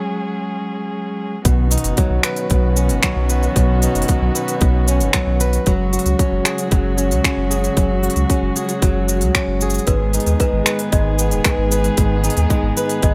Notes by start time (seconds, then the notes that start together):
Already playing: F#3 G#3 C#4 G#4
1.45 B1 B2 D#3 B3 C#4 F#4, kick, open hi-hat, shaker
1.71 D#4, open hi-hat, shaker
1.78 open hi-hat
1.84 F#1, open hi-hat, shaker
1.97 F#3, kick, open hi-hat
2.10 B1
2.23 B4, finger snap, open hi-hat, shaker
2.36 open hi-hat, shaker
2.50 B1 B2, kick, open hi-hat, shaker
2.76 C#4, shaker
2.89 F#1, open hi-hat, shaker
3.03 F#3, finger snap, kick, open hi-hat, shaker
3.16 B1
3.29 B4, shaker
3.43 shaker
3.56 B1 B2, kick, open hi-hat, shaker
3.82 D#4, open hi-hat, shaker
3.95 F#1, open hi-hat, shaker
4.02 open hi-hat
4.08 F#3, kick, open hi-hat, shaker
4.22 B1
4.35 B4, open hi-hat, shaker
4.48 open hi-hat, shaker
4.61 B1 B2, kick, open hi-hat, shaker
4.88 C#4, shaker
5.00 F#1, open hi-hat, shaker
5.13 F#3, finger snap, kick, open hi-hat, shaker
5.27 B1
5.40 B4, shaker
5.53 open hi-hat, shaker
5.66 F#1 C#3 F#3 G#3 F#4, kick, open hi-hat, shaker
5.93 F#4, open hi-hat, shaker
5.99 open hi-hat
6.06 C#2, open hi-hat, shaker
6.19 C#4, kick, open hi-hat, shaker
6.32 F#1
6.45 G#4, finger snap, open hi-hat, shaker
6.58 open hi-hat, shaker
6.71 F#1 F#3, kick, open hi-hat, shaker
6.97 C#4, shaker
7.11 C#2, open hi-hat, shaker
7.24 C#4, finger snap, kick, open hi-hat, shaker
7.38 F#1
7.50 G#4, shaker
7.64 open hi-hat, shaker
7.77 F#1 F#3, kick, open hi-hat, shaker
8.03 F#4, shaker
8.10 open hi-hat
8.16 C#2, open hi-hat, shaker
8.29 C#4, kick, open hi-hat, shaker
8.42 F#1
8.56 G#4, open hi-hat, shaker
8.69 open hi-hat, shaker
8.82 F#1 F#3, kick, open hi-hat, shaker
9.09 C#4, shaker
9.21 C#2, open hi-hat, shaker
9.35 C#4, finger snap, kick, open hi-hat, shaker
9.48 F#1
9.61 G#4, shaker
9.70 open hi-hat, shaker
9.74 shaker
9.78 shaker
9.87 G#1 G#2 D#3 B3 G#4 B4, kick, open hi-hat, shaker
10.13 D#4, open hi-hat, shaker
10.20 open hi-hat
10.26 D#2, open hi-hat, shaker
10.40 G#3 B4, kick, open hi-hat, shaker
10.53 G#1
10.66 B4, finger snap, open hi-hat, shaker
10.79 open hi-hat, shaker
10.92 G#1 G#2 D#5, kick, open hi-hat, shaker
11.19 B3, shaker
11.31 D#1, open hi-hat, shaker
11.44 G#3 B4, finger snap, kick, open hi-hat, shaker
11.58 G#1
11.71 B4, shaker
11.84 open hi-hat, shaker
11.97 G#1 G#2, kick, open hi-hat, shaker
12.24 D#4, open hi-hat, shaker
12.30 open hi-hat
12.37 D#2, open hi-hat, shaker
12.50 G#3, kick, open hi-hat, shaker
12.63 G#1
12.77 B4, open hi-hat, shaker
12.89 open hi-hat, shaker
13.02 G#1 G#2 D#5, kick, open hi-hat, shaker